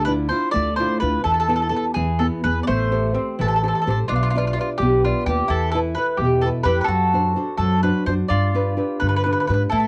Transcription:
Already playing: upright bass D2, nylon-string guitar D3
0.05 nylon-string guitar D4 E4 F4, mandolin B4
0.29 nylon-string guitar D4 E4 F4, mandolin C5
0.51 upright bass D2, nylon-string guitar A3, mandolin D5
0.76 nylon-string guitar D4 E4 F4, mandolin C5
1.00 upright bass D2, nylon-string guitar D4 E4 F4, mandolin B4
1.24 upright bass E2, nylon-string guitar E3, mandolin A4
1.34 mandolin A4
1.40 mandolin A4
1.48 nylon-string guitar B3 E4 A4, mandolin A4
1.56 mandolin A4
1.62 mandolin A4
1.69 nylon-string guitar B3 E4 A4, mandolin A4
1.76 mandolin A4
1.94 upright bass E2, nylon-string guitar E3, mandolin G#4
2.19 nylon-string guitar B3 E4 G#4, mandolin A4
2.44 upright bass E2, nylon-string guitar B3 E4 G#4, mandolin B4
2.63 mandolin D5
2.67 upright bass A1, mandolin A3 C5, nylon-string guitar A3
2.92 nylon-string guitar G4 A4 C5
3.14 mandolin C4, nylon-string guitar G4 A4 C5
3.39 upright bass A1, nylon-string guitar E3, mandolin A4
3.48 mandolin A4
3.56 mandolin A4
3.63 nylon-string guitar G4 A4 C5, mandolin A4
3.68 mandolin A4
3.75 mandolin A4
3.82 mandolin A4
3.87 upright bass A1, nylon-string guitar G4 A4 C5, mandolin A4
4.08 upright bass B1, nylon-string guitar B3, mandolin D4 F4
4.16 mandolin F4
4.23 mandolin F4
4.30 mandolin F4
4.35 nylon-string guitar F4 B4 D5, mandolin F4
4.47 mandolin F4
4.53 mandolin F4
4.58 nylon-string guitar F4 B4 D5, mandolin F4
4.78 upright bass B1, mandolin G4
4.82 nylon-string guitar B3
5.05 nylon-string guitar F4 B4 D5, mandolin F4
5.26 upright bass D#2, nylon-string guitar F4 B4 D5, mandolin G4
5.48 upright bass E2, nylon-string guitar E3, mandolin E4 A4
5.71 nylon-string guitar E4 A4 B4, mandolin A4
5.94 nylon-string guitar E4 A4 B4, mandolin B4
6.17 upright bass E2, nylon-string guitar B2, mandolin G4
6.41 nylon-string guitar E4 A4, mandolin A4
6.45 nylon-string guitar B4
6.63 upright bass F2, nylon-string guitar E4 A4 B4, mandolin G4 B4
6.81 mandolin A4 B4
6.88 upright bass F#2, nylon-string guitar F#3, mandolin F#4
7.13 nylon-string guitar D4 F#4 C5
7.36 nylon-string guitar D4 F#4 C5
7.57 upright bass F#2, nylon-string guitar F#3, mandolin A4
7.83 nylon-string guitar D4 F#4 C5, mandolin B4
8.06 upright bass F#2, nylon-string guitar D4 F#4 C5, mandolin C5
8.28 upright bass G2, mandolin F4 D5
8.33 nylon-string guitar G3
8.55 nylon-string guitar D4 G4 B4
8.77 nylon-string guitar D4 G4 B4
9.00 upright bass G2, nylon-string guitar D3, mandolin B4
9.09 mandolin B4
9.16 mandolin B4
9.24 nylon-string guitar D4 G4 B4, mandolin B4
9.32 mandolin B4
9.40 mandolin B4
9.47 upright bass G#2, nylon-string guitar D4 G4 B4, mandolin B4
9.54 mandolin B4
9.70 upright bass A2, nylon-string guitar A3, mandolin E4 A4
9.80 mandolin A4

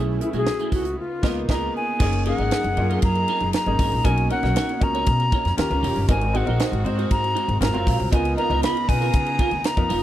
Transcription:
Already playing: upright bass B1, grand piano A3 C#4 E4 G#4, clean electric guitar A3 E4 G#4, string section A3 B3 E4
0.20 grand piano A3 C#4 E4 G#4, flute E4, muted clean electric guitar stroke, closed hi-hat
0.32 upright bass B1, grand piano A3 C#4 E4 F#4, clean electric guitar A3 E4 G#4, closed hi-hat
0.38 flute G#4
0.47 muted clean electric guitar stroke, snare
0.59 clean electric guitar A3 E4 G#4, closed hi-hat
0.72 upright bass C#2, clean electric guitar A3 E4 G#4, flute F#4, kick, open hi-hat
0.85 muted clean electric guitar stroke, closed hi-hat
0.97 string section C#3 D#4 F4 A#4, flute F4
1.23 upright bass C#2, grand piano A#3 B3 D#4 F4, clean electric guitar B3 F4 A#4, kick, snare, crash
1.48 upright bass C#2, grand piano A#3 B3 D#4 G#4, clean electric guitar B3 F4 A#4, flute A#5, kick, snare, crash
1.77 flute G#5
1.99 upright bass F#1, string section F#3 D#4 G#4 A#4, grand piano A#3 C#4 D#4 G#4, clean electric guitar D#4 G#4 A#4, kick, crash
2.13 muted clean electric guitar stroke, ride
2.25 grand piano A#3 C#4 D#4 G#4, clean electric guitar D#4 G#4 A#4, flute F#5, ride
2.38 upright bass G#1, grand piano A#3 C#4 D#4 G#4, clean electric guitar D#4 G#4 A#4, ride
2.51 clean electric guitar D#4 G#4 A#4, snare, ride
2.64 upright bass F#1, muted clean electric guitar stroke, ride
2.77 upright bass F#2, grand piano A#3 C#4 D#4 F4, muted clean electric guitar stroke, ride
2.90 clean electric guitar D#4 G#4 A#4, ride
3.02 upright bass F#2, flute A#5, muted clean electric guitar stroke, kick, ride
3.15 muted clean electric guitar stroke, ride
3.28 clean electric guitar D#4 G#4 A#4, ride
3.40 upright bass F#1, muted clean electric guitar stroke, ride
3.53 flute A#5, snare, ride
3.66 upright bass G#1, grand piano A#3 C#4 D#4 G#4, muted clean electric guitar stroke, ride
3.79 upright bass G#1, clean electric guitar D#4 G#4 A#4, kick, open hi-hat, ride
3.92 upright bass A#1, muted clean electric guitar stroke, ride
4.04 upright bass B1, string section A#3 B3, grand piano C#4 D#4 F#4 A#4, clean electric guitar D#4 A#4 C#5, flute G#5, kick, hi-hat pedal, ride
4.17 muted clean electric guitar stroke, ride
4.30 grand piano C#4 D#4 F#4 A#4, clean electric guitar D#4 A#4 C#5, flute F#5, ride
4.42 upright bass B1, grand piano C#4 D#4 F#4 A#4, clean electric guitar D#4 A#4 C#5, snare, ride
4.56 clean electric guitar D#4 A#4 C#5, snare, ride
4.69 muted clean electric guitar stroke, ride
4.80 upright bass C#2, grand piano C#4 D#4 F#4 A#4, flute A#5, muted clean electric guitar stroke, kick, ride
4.95 clean electric guitar D#4 A#4 C#5, ride
5.06 upright bass B2, muted clean electric guitar stroke, kick, ride
5.20 muted clean electric guitar stroke, ride
5.32 clean electric guitar D#4 A#4 C#5, kick, ride
5.45 upright bass F2, muted clean electric guitar stroke, snare, ride
5.57 upright bass D#2, string section D#3 C#4 G4, grand piano C#4 F4 G4 A#4, flute A#5, snare, ride
5.70 upright bass C#2, grand piano C#4 F4 G4 A#4, muted clean electric guitar stroke, ride
5.83 upright bass F1, clean electric guitar D#4 G4 C#5, open hi-hat, ride
5.96 upright bass G1, muted clean electric guitar stroke, ride
6.08 upright bass G#1, string section G#3 C4 F#4, grand piano C4 D#4 F#4 A#4, clean electric guitar D#4 F#4 C5, flute G#5, kick, hi-hat pedal, ride
6.21 muted clean electric guitar stroke, ride
6.33 grand piano C4 D#4 F#4 G#4, clean electric guitar D#4 F#4 C5, flute F#5, ride
6.46 upright bass A#1, grand piano C4 D#4 F#4 A#4, clean electric guitar D#4 F#4 C5, ride
6.59 clean electric guitar D#4 F#4 C5, snare, ride
6.72 upright bass G#1, muted clean electric guitar stroke, ride
6.84 upright bass G#2, grand piano C4 D#4 F#4 C5, muted clean electric guitar stroke, ride
6.98 clean electric guitar D#4 F#4 C5, ride
7.11 upright bass G#2, flute A#5, muted clean electric guitar stroke, kick, ride
7.23 muted clean electric guitar stroke, ride
7.35 clean electric guitar D#4 F#4 C5, ride
7.48 upright bass G#1, muted clean electric guitar stroke, ride
7.61 upright bass G#1, string section F#3, grand piano C4 F4 F#4 A#4, flute A#5, muted clean electric guitar stroke, snare, ride
7.73 upright bass F#1, grand piano C4 F4 F#4 A#4, clean electric guitar F#4 C5 F5, ride
7.87 upright bass A#1, clean electric guitar F#4 C5 F5, kick, open hi-hat, ride
8.00 upright bass C2, muted clean electric guitar stroke, ride
8.11 upright bass C#2, string section C#3 B3 D#4 F4 A#5, grand piano B3 D#4 F4 A#4, clean electric guitar B3 F4 A#4, flute G#5, kick, hi-hat pedal, ride
8.25 muted clean electric guitar stroke, ride
8.37 grand piano B3 D#4 F4 A#4, clean electric guitar B3 F4 A#4, flute A#5, ride
8.50 upright bass C#2, grand piano B3 D#4 F4 A#4, clean electric guitar B3 F4 A#4, ride
8.63 clean electric guitar B3 F4 A#4, flute B5, snare, ride
8.75 muted clean electric guitar stroke, ride
8.88 upright bass B2, grand piano B3 D#4 F4 B4, flute G#5, muted clean electric guitar stroke, kick, open hi-hat, ride
9.01 clean electric guitar B3 F4 A#4, ride
9.13 upright bass C#3, muted clean electric guitar stroke, kick, hi-hat pedal, ride
9.26 muted clean electric guitar stroke, ride
9.39 clean electric guitar B3 F4 A#4, kick, ride
9.51 upright bass D#2, muted clean electric guitar stroke, ride
9.64 flute A#5, snare, ride
9.77 upright bass F2, grand piano B3 D#4 F4 A#4, muted clean electric guitar stroke, kick, ride
9.89 upright bass F#1, clean electric guitar B3 F4 A#4, open hi-hat, ride

